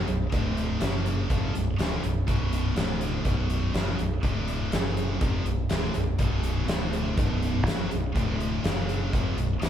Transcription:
0.08 B0 B1 F#2, closed hi-hat
0.32 D1 D2 A2 D3, kick, closed hi-hat
0.57 closed hi-hat
0.80 F#1 F#2 C#3 F#3, snare, closed hi-hat
1.06 closed hi-hat
1.29 F1 F2 C3 F3, kick, closed hi-hat
1.55 B0 B1 F#2, closed hi-hat
1.78 D1 D2 A2 D3, snare, closed hi-hat
2.03 B0 B1 F#2, closed hi-hat
2.27 B0 B1 F#2 B2, kick, closed hi-hat
2.53 closed hi-hat
2.76 D1 D2 A2 D3, snare, closed hi-hat
3.01 closed hi-hat
3.25 B0 B1 F#2 B2, kick, closed hi-hat
3.50 closed hi-hat
3.73 F#1 F#2 C#3 F#3, snare, closed hi-hat
3.99 B0 B1 F#2, closed hi-hat
4.23 D1 D2 A2 D3, kick, closed hi-hat
4.48 closed hi-hat
4.72 F#1 F#2 C#3 F#3, snare, closed hi-hat
4.97 closed hi-hat
5.21 F1 F2 C3 F3, kick, closed hi-hat
5.45 B0 B1 F#2, closed hi-hat
5.69 D1 D2 A2 D3, snare, closed hi-hat
5.94 B0 B1 F#2, closed hi-hat
6.18 B0 B1 F#2 B2, kick, closed hi-hat
6.43 closed hi-hat
6.68 D1 D2 A2 D3, snare, closed hi-hat
6.93 closed hi-hat
7.16 B0 B1 F#2 B2, kick, closed hi-hat
7.42 closed hi-hat
7.65 F#1 F#2 C#3 F#3, snare, closed hi-hat
7.90 B0 B1 F#2, closed hi-hat
8.15 D1 D2 A2 D3, kick, closed hi-hat
8.40 closed hi-hat
8.64 F#1 F#2 C#3 F#3, snare, closed hi-hat
8.89 closed hi-hat
9.13 F1 F2 C3 F3, kick, closed hi-hat
9.37 B0 B1 F#2, closed hi-hat
9.61 D1 D2 A2 D3, snare, closed hi-hat

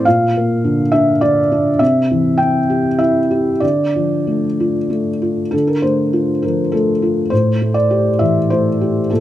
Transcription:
0.05 A#2 F5
0.37 A#3
0.64 D3
0.92 D4 E5
1.21 D3 D5
1.52 D4
1.79 C3 E5
2.11 E3
2.38 C4 G5
2.70 G4
2.99 E4 E5
3.31 G4
3.60 D3 D5
3.95 F3
4.27 A3
4.60 F4
4.90 A3
5.22 F4
5.51 D3 A4
5.67 A#4
5.82 A3 C5
6.13 F4
6.42 F3 A#4
6.72 A3 A4
7.02 F4
7.30 A2 C5
7.62 A3
7.74 D5
7.91 G4
8.19 E3 E5
8.50 A3 C5
8.81 G4
9.10 A#2 A4

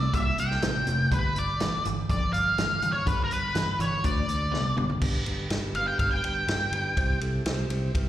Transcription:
Already playing: C3 A3 D5
0.13 C2 C3 A#3 E5, kick, closed hi-hat
0.38 C2 G5, closed hi-hat
0.51 snare
0.62 A1 C3 A3, snare, closed hi-hat
0.87 F1 C3 A3, closed hi-hat
1.11 G1 G2 D3 B4, kick, closed hi-hat
1.36 G1 D5, closed hi-hat
1.60 G1 G2 E3, snare, closed hi-hat
1.85 G1 G2 E3, closed hi-hat
2.09 G1 G2 F3 D5, kick, closed hi-hat
2.33 G1 F5, closed hi-hat
2.58 G1 G2 E3, snare, closed hi-hat
2.82 G1 G2 E3, closed hi-hat
2.92 C#5
3.06 G1 G2 D3 B4, kick, closed hi-hat
3.24 A#4
3.31 G1 B4, closed hi-hat
3.55 G1 G2 E3, snare, closed hi-hat
3.79 G1 G2 E3 C#5, closed hi-hat
4.04 D2 D3 A3 D5, kick, closed hi-hat
4.28 D2, closed hi-hat
4.52 C2 D3 B3, snare
4.77 F#1 D3 B3, mid tom
4.90 floor tom
5.02 G1 B3 D4 G4 B4, kick, crash
5.26 G1 B3 D4 G4 B4, ride
5.50 G1 B3 D4 G4 B4, snare, ride
5.74 G1 B3 G4 F5, ride
5.78 D4 B4
5.88 G5
5.99 G1 B3 D4 G4 B4 F5, kick, ride
6.11 G5
6.24 G1 B3 D4 G4 B4 G5, ride
6.48 G1 B3 D4 G4 B4, snare, ride
6.72 G1 B3 D4 G4 B4, ride
6.96 C2 C4 E4 G4 C5, kick, ride
7.21 C2 C4 E4 G4 A4, ride
7.45 C2 C4 E4 G4 C5, snare, ride
7.70 C2 C4 E4 G4 C5, ride
7.95 C2 C4 E4 G4 B4, kick, ride

